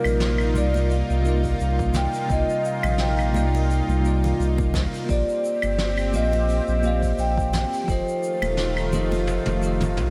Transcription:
Already playing: C3 G3 A#3 D#4 F4 A#4 D5
0.04 A#1, open hi-hat, muted conga, claves, shaker
0.20 snare, open hi-hat, shaker
0.38 claves, shaker
0.53 C2 C3 G3 A#3 D#4 F4, high conga, shaker
0.57 D5
0.74 open hi-hat, muted conga, high conga, shaker
0.90 F5, open hi-hat, shaker
1.10 C2, shaker
1.21 C3 G3 A#3
1.25 D#4 F4 D5, high conga, shaker
1.43 kick, open hi-hat, shaker
1.58 C2, open hi-hat, shaker
1.79 kick, shaker
1.94 G5, snare, high conga, low conga, shaker
2.13 open hi-hat, shaker
2.26 C2 C3 G3 A#3, open hi-hat
2.30 D#4 F4 D#5, kick, shaker
2.49 shaker
2.65 F5, shaker
2.83 A#1, open hi-hat, muted conga, claves, shaker
2.98 G5, snare, shaker
3.19 claves, shaker
3.32 C2 C3 G3 A#3 D#4 F4, high conga, shaker
3.36 D5
3.54 open hi-hat, muted conga, high conga, shaker
3.69 open hi-hat, shaker
3.88 C2, high conga, shaker
4.00 C3 G3 A#3
4.04 D#4 F4 D5, shaker
4.23 open hi-hat, low conga, shaker
4.39 C2, open hi-hat, shaker
4.58 kick, muted conga, shaker
4.74 kick, snare, low conga, shaker
4.94 open hi-hat, shaker
5.05 A#3 F4 G4, open hi-hat
5.09 A#1 C4 G4 C5 D5, kick, shaker
5.13 D5
5.29 shaker
5.45 shaker
5.62 G1, open hi-hat, muted conga, claves, shaker
5.78 snare, shaker
5.98 claves, shaker
6.12 A#1 A#3 F4 G4 C5 D#5, high conga, shaker
6.16 F5
6.32 open hi-hat, muted conga, high conga, shaker
6.48 open hi-hat, shaker
6.67 A#1, shaker
6.80 A#3 F4, high conga, shaker
6.84 G4 C5 D5 F5
7.02 kick, open hi-hat, shaker
7.18 A#1 G5, open hi-hat, shaker
7.37 kick, shaker
7.53 snare, high conga, low conga, shaker
7.73 open hi-hat, shaker
7.84 D#3 F3 A3 F4, open hi-hat
7.88 F1 G4 A4 C5 D#5, kick, shaker
8.08 shaker
8.23 shaker
8.41 D#1, open hi-hat, muted conga, claves, shaker
8.57 snare, shaker
8.77 claves, shaker
8.91 F1 F3 F4 G4 A4 D#5, high conga, low conga, shaker
9.11 open hi-hat, muted conga, high conga, shaker
9.27 open hi-hat, high tom, shaker
9.46 F1, high tom, high conga, shaker
9.59 F3 F4 G4, shaker
9.65 A4 D#5
9.80 open hi-hat, mid tom, low conga, shaker
9.97 C2, open hi-hat, mid tom, shaker

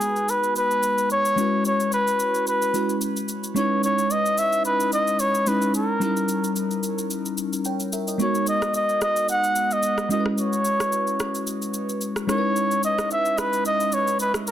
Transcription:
Already playing: G#3 B3 D#4 F#4 G#4 B4
0.01 shaker
0.16 shaker
0.29 B4, shaker
0.44 shaker
0.56 B4, shaker
0.71 shaker
0.83 shaker
0.98 shaker
1.10 C#5, shaker
1.25 shaker
1.36 G#3 C#4 E4 F#4, shaker
1.41 B4
1.65 C#5, shaker
1.80 shaker
1.92 B4, shaker
2.07 shaker
2.20 shaker
2.34 shaker
2.47 B4, shaker
2.62 shaker
2.74 G#3 C#4 E4 F#4 B4, shaker
2.89 shaker
3.01 shaker
3.17 shaker
3.28 shaker
3.44 shaker
3.54 G#3 C#4 D#4 E4 C#5, shaker
3.59 B4
3.83 C#5, shaker
3.98 shaker
4.11 D#5, shaker
4.26 shaker
4.38 E5, shaker
4.53 shaker
4.65 B4, shaker
4.80 shaker
4.92 D#5, shaker
5.07 shaker
5.19 C#5, shaker
5.35 shaker
5.47 G#3 C#4 D#4 E4 B4 C#5, shaker
5.62 shaker
5.74 A#4, shaker
6.00 G3 C#4 D#4 E4, shaker
6.04 A#4
6.17 shaker
6.29 shaker
6.44 shaker
6.56 shaker
6.71 shaker
6.83 shaker
6.98 shaker
7.11 shaker
7.26 shaker
7.38 shaker
7.53 shaker
7.65 C#5 G5, shaker
7.80 shaker
7.93 A#4 E5, shaker
8.08 A#4 D#5, shaker
8.18 G#3 B3 D#4 F#4 C#5, shaker
8.23 A#4
8.35 shaker
8.47 D#5, shaker
8.62 cross-stick, shaker
8.74 D#5, shaker
8.89 shaker
9.01 D#5, cross-stick, shaker
9.16 shaker
9.29 F#5, shaker
9.44 shaker
9.56 shaker
9.71 D#5, shaker
9.83 shaker
9.98 cross-stick, shaker
10.09 G#3 C#4 E4 F#4 D#5, shaker
10.14 A#4
10.20 B4
10.26 cross-stick
10.38 C#5, shaker
10.53 shaker
10.65 shaker
10.80 cross-stick, shaker
10.92 shaker
11.07 shaker
11.20 cross-stick, shaker
11.35 shaker
11.47 shaker
11.62 shaker
11.74 shaker
11.89 shaker
12.01 shaker
12.16 cross-stick, shaker
12.27 G#3 C#4 D#4 E4 C#5, cross-stick, shaker
12.32 A#4
12.38 B4
12.56 shaker
12.71 shaker
12.83 D#5, shaker
12.99 cross-stick, shaker
13.11 E5, shaker
13.26 shaker
13.38 B4, cross-stick, shaker
13.53 shaker
13.65 D#5, shaker
13.80 shaker
13.92 C#5, shaker
14.07 shaker
14.19 B4, shaker
14.34 cross-stick, shaker
14.47 A#4, shaker

